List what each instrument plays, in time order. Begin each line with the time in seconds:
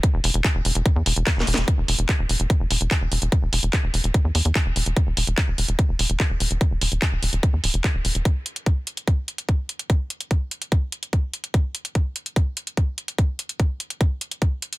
0.03 kick, closed hi-hat
0.14 analog synth bass E1
0.24 analog synth bass E1, open hi-hat
0.34 analog synth bass E1, closed hi-hat
0.44 kick, clap, closed hi-hat
0.55 analog synth bass E1
0.65 analog synth bass E1, open hi-hat
0.75 analog synth bass E1, closed hi-hat
0.86 kick, closed hi-hat
0.96 analog synth bass E2
1.06 analog synth bass E1, open hi-hat
1.16 analog synth bass E1, closed hi-hat
1.27 kick, snare, clap, closed hi-hat
1.37 analog synth bass E1, snare
1.47 analog synth bass E1, open hi-hat
1.54 analog synth bass E1, snare, closed hi-hat
1.68 kick, closed hi-hat
1.78 analog synth bass E1
1.88 analog synth bass E1, open hi-hat
1.99 analog synth bass E1, closed hi-hat
2.09 kick, clap, closed hi-hat
2.19 analog synth bass E1
2.29 analog synth bass E1, open hi-hat
2.40 analog synth bass E1, closed hi-hat
2.50 kick, closed hi-hat
2.60 analog synth bass F1
2.71 analog synth bass E1, open hi-hat
2.81 analog synth bass E1, closed hi-hat
2.91 kick, clap, closed hi-hat
3.01 analog synth bass E1
3.12 analog synth bass E1, open hi-hat
3.22 analog synth bass E1, closed hi-hat
3.32 kick, closed hi-hat
3.42 analog synth bass E1
3.53 analog synth bass E1, open hi-hat
3.63 analog synth bass E1, closed hi-hat
3.73 kick, clap, closed hi-hat
3.84 analog synth bass E1
3.94 analog synth bass E1, open hi-hat
4.04 analog synth bass E1, closed hi-hat
4.14 kick, closed hi-hat
4.25 analog synth bass E2
4.35 analog synth bass E2, open hi-hat
4.45 analog synth bass E2, closed hi-hat
4.55 kick, clap, closed hi-hat
4.66 analog synth bass E1
4.76 analog synth bass E1, open hi-hat
4.86 analog synth bass E1, closed hi-hat
4.97 kick, closed hi-hat
5.07 analog synth bass E1
5.17 analog synth bass E1, open hi-hat
5.27 analog synth bass E1, closed hi-hat
5.38 kick, clap, closed hi-hat
5.48 analog synth bass E1
5.58 analog synth bass E1, open hi-hat
5.68 analog synth bass E1, closed hi-hat
5.79 kick, closed hi-hat
5.89 analog synth bass F1
5.99 analog synth bass E1, open hi-hat
6.10 analog synth bass E1, closed hi-hat
6.20 kick, clap, closed hi-hat
6.30 analog synth bass E1
6.40 analog synth bass E1, open hi-hat
6.51 analog synth bass E1, closed hi-hat
6.61 kick, closed hi-hat
6.71 analog synth bass E1
6.81 analog synth bass E1, open hi-hat
6.92 analog synth bass E1, closed hi-hat
7.02 kick, clap, closed hi-hat
7.12 analog synth bass E1
7.23 analog synth bass E1, open hi-hat
7.33 analog synth bass E1, closed hi-hat
7.43 kick, closed hi-hat
7.53 analog synth bass E2
7.64 analog synth bass D1, open hi-hat
7.74 analog synth bass F1, closed hi-hat
7.84 kick, clap, closed hi-hat
7.94 analog synth bass E1
8.05 analog synth bass E1, open hi-hat
8.15 analog synth bass E1, closed hi-hat
8.25 kick, closed hi-hat
8.46 closed hi-hat
8.56 closed hi-hat
8.66 kick, closed hi-hat
8.87 closed hi-hat
8.97 closed hi-hat
9.08 kick, closed hi-hat
9.28 closed hi-hat
9.38 closed hi-hat
9.49 kick, closed hi-hat
9.69 closed hi-hat
9.79 closed hi-hat
9.90 kick, closed hi-hat
10.10 closed hi-hat
10.21 closed hi-hat
10.31 kick, closed hi-hat
10.51 closed hi-hat
10.62 closed hi-hat
10.72 kick, closed hi-hat
10.92 closed hi-hat
11.03 closed hi-hat
11.13 kick, closed hi-hat
11.34 closed hi-hat
11.44 closed hi-hat
11.54 kick, closed hi-hat
11.75 closed hi-hat
11.85 closed hi-hat
11.95 kick, closed hi-hat
12.16 closed hi-hat
12.26 closed hi-hat
12.36 kick, closed hi-hat
12.57 closed hi-hat
12.67 closed hi-hat
12.77 kick, closed hi-hat
12.98 closed hi-hat
13.08 closed hi-hat
13.18 kick, closed hi-hat
13.39 closed hi-hat
13.49 closed hi-hat
13.60 kick, closed hi-hat
13.80 closed hi-hat
13.90 closed hi-hat
14.01 kick, closed hi-hat
14.21 closed hi-hat
14.31 closed hi-hat
14.42 kick, closed hi-hat
14.62 closed hi-hat
14.73 closed hi-hat